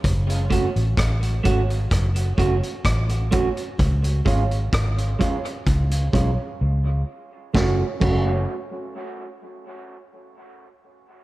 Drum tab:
CC |----------------|----------------|--x-------------|
HH |xxxxxxxxxxxxxxxx|xxxxxxxxxxx-----|----------------|
SD |----r---r---r---|----r-----------|o---------------|
BD |o-o-o-o-o-o-o-o-|o-o-o-o-o-o-----|o-o-------------|